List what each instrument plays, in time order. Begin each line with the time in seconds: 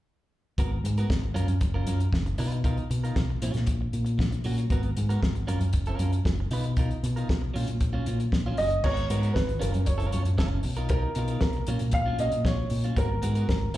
0.58 fingered electric bass G#1, clean electric guitar B3 F#4 A#4, kick, closed hi-hat
0.72 muted clean electric guitar stroke
0.84 fingered electric bass G#2, muted clean electric guitar stroke, closed hi-hat
0.97 clean electric guitar B3 F#4 A#4, closed hi-hat
1.10 fingered electric bass G#1, muted clean electric guitar stroke, kick, snare
1.22 muted clean electric guitar stroke
1.34 fingered electric bass F#2, clean electric guitar C#4 F4 A#4, closed hi-hat
1.48 fingered electric bass F#2, muted clean electric guitar stroke, closed hi-hat
1.61 fingered electric bass F#1, muted clean electric guitar stroke, kick, closed hi-hat
1.74 clean electric guitar C#4 F4 A#4
1.87 fingered electric bass F#2, clean electric guitar C#4 F4 A#4, closed hi-hat
2.00 muted clean electric guitar stroke, closed hi-hat
2.12 fingered electric bass F#1, muted clean electric guitar stroke, kick, snare
2.26 muted clean electric guitar stroke, closed hi-hat
2.38 fingered electric bass B2, clean electric guitar D#4 F4 B4, open hi-hat
2.52 muted clean electric guitar stroke, closed hi-hat
2.64 clean electric guitar D#4 F4 A#4, kick, closed hi-hat
2.77 muted clean electric guitar stroke, closed hi-hat
2.90 fingered electric bass B2, muted clean electric guitar stroke, closed hi-hat
3.04 clean electric guitar D#4 F4 A#4, closed hi-hat
3.16 fingered electric bass B1, kick, snare
3.30 muted clean electric guitar stroke
3.42 fingered electric bass A#2, clean electric guitar F#3 C#4 F4, closed hi-hat
3.54 fingered electric bass A#2, muted clean electric guitar stroke, snare, closed hi-hat
3.67 fingered electric bass A#1, muted clean electric guitar stroke, kick, closed hi-hat
3.81 muted clean electric guitar stroke
3.93 fingered electric bass A#2, closed hi-hat
4.05 muted clean electric guitar stroke, closed hi-hat
4.18 fingered electric bass A#1, muted clean electric guitar stroke, kick, snare
4.31 muted clean electric guitar stroke, closed hi-hat
4.44 fingered electric bass A#2, clean electric guitar F#3 C#4 F#4, open hi-hat
4.58 muted clean electric guitar stroke, closed hi-hat
4.70 fingered electric bass G#1, clean electric guitar B3 F#4 A#4, kick, closed hi-hat
4.83 muted clean electric guitar stroke, closed hi-hat
4.97 fingered electric bass G#2, muted clean electric guitar stroke, closed hi-hat
5.09 clean electric guitar B3 F#4 A#4, closed hi-hat
5.23 fingered electric bass G#1, kick, snare
5.35 muted clean electric guitar stroke, closed hi-hat
5.47 fingered electric bass F#2, clean electric guitar C#4 F4 A#4, closed hi-hat
5.60 fingered electric bass F#2, muted clean electric guitar stroke, closed hi-hat
5.73 fingered electric bass F#1, muted clean electric guitar stroke, kick, closed hi-hat
5.86 clean electric guitar C#4 F4 A#4, closed hi-hat
5.99 fingered electric bass F#2, clean electric guitar C#4 F4 A#4, closed hi-hat
6.12 muted clean electric guitar stroke, closed hi-hat
6.25 fingered electric bass F#1, muted clean electric guitar stroke, kick, snare
6.40 muted clean electric guitar stroke
6.51 fingered electric bass B2, clean electric guitar D#4 F4 B4, open hi-hat
6.64 muted clean electric guitar stroke, closed hi-hat
6.77 clean electric guitar D#4 F4 A#4, kick, closed hi-hat
6.91 muted clean electric guitar stroke, closed hi-hat
7.03 fingered electric bass B2, muted clean electric guitar stroke, closed hi-hat
7.16 clean electric guitar D#4 F4 A#4, closed hi-hat
7.29 fingered electric bass B1, muted clean electric guitar stroke, kick, snare
7.42 muted clean electric guitar stroke
7.54 fingered electric bass A#2, clean electric guitar F#3 C#4 F4, open hi-hat
7.67 fingered electric bass A#2, muted clean electric guitar stroke, closed hi-hat
7.81 fingered electric bass A#1, muted clean electric guitar stroke, kick, closed hi-hat
7.93 clean electric guitar F#3 C#4 F4
8.06 fingered electric bass A#2, clean electric guitar F#3 C#4 F4, closed hi-hat
8.20 muted clean electric guitar stroke, closed hi-hat
8.32 fingered electric bass A#1, muted clean electric guitar stroke, kick, snare
8.46 clean electric guitar F#3 C#4 F4
8.57 fingered electric bass F#1, clean electric guitar F#3 C#4 F#4, grand piano D#5, open hi-hat
8.71 muted clean electric guitar stroke, closed hi-hat
8.84 fingered electric bass G#1, clean electric guitar B3 F#4 A#4, grand piano C#5, kick, crash
8.97 muted clean electric guitar stroke, closed hi-hat
9.10 fingered electric bass G#2, clean electric guitar B3 F#4 A#4, closed hi-hat
9.22 clean electric guitar B3 F#4 A#4, closed hi-hat
9.34 fingered electric bass G#1, grand piano B4, kick, snare
9.47 muted clean electric guitar stroke, closed hi-hat
9.60 fingered electric bass F#1, clean electric guitar C#4 F4 A#4, grand piano A#4, closed hi-hat
9.73 fingered electric bass F#2, muted clean electric guitar stroke, closed hi-hat
9.85 fingered electric bass F#1, grand piano C#5, muted clean electric guitar stroke, kick, closed hi-hat
9.98 clean electric guitar C#4 F4 A#4, closed hi-hat
10.11 fingered electric bass F#2, clean electric guitar C#4 F4 C#5, closed hi-hat
10.24 fingered electric bass F#2, muted clean electric guitar stroke, closed hi-hat
10.38 fingered electric bass F#1, clean electric guitar C#4 F4 A#4, kick, snare
10.50 muted clean electric guitar stroke
10.63 fingered electric bass B1, muted clean electric guitar stroke, open hi-hat
10.76 clean electric guitar D#4 F4 A#4, closed hi-hat
10.89 clean electric guitar D#4 F4 A#4, grand piano A#4, kick, closed hi-hat
11.04 muted clean electric guitar stroke
11.15 fingered electric bass B2, clean electric guitar D#4 F4 A#4, closed hi-hat
11.28 clean electric guitar D#4 F4 A#4, closed hi-hat
11.41 fingered electric bass B1, grand piano A#4, muted clean electric guitar stroke, kick, snare
11.53 closed hi-hat
11.57 muted clean electric guitar stroke
11.67 fingered electric bass A#2, clean electric guitar F#3 C#4 F4, closed hi-hat
11.79 fingered electric bass A#2, muted clean electric guitar stroke, closed hi-hat
11.91 fingered electric bass A#1, grand piano F5, muted clean electric guitar stroke, kick, closed hi-hat
12.06 clean electric guitar F#3 C#4 F4
12.19 fingered electric bass A#2, clean electric guitar F#3 C#4 F#4, grand piano D#5, closed hi-hat
12.32 fingered electric bass A#2, muted clean electric guitar stroke, closed hi-hat
12.45 fingered electric bass A#1, clean electric guitar F#3 C#4 F4, grand piano C#5, kick, snare
12.59 muted clean electric guitar stroke
12.70 fingered electric bass A#2, muted clean electric guitar stroke, open hi-hat
12.84 clean electric guitar F#3 C#4 F4, closed hi-hat
12.96 fingered electric bass G#1, clean electric guitar B3 F#4 A#4, grand piano A#4, kick, closed hi-hat
13.10 muted clean electric guitar stroke
13.22 fingered electric bass G#2, clean electric guitar B3 F#4 A#4, closed hi-hat
13.35 clean electric guitar B3 F#4 A#4, closed hi-hat
13.49 fingered electric bass G#1, grand piano A#4, muted clean electric guitar stroke, kick, snare
13.61 muted clean electric guitar stroke
13.74 fingered electric bass F#1, clean electric guitar C#4, closed hi-hat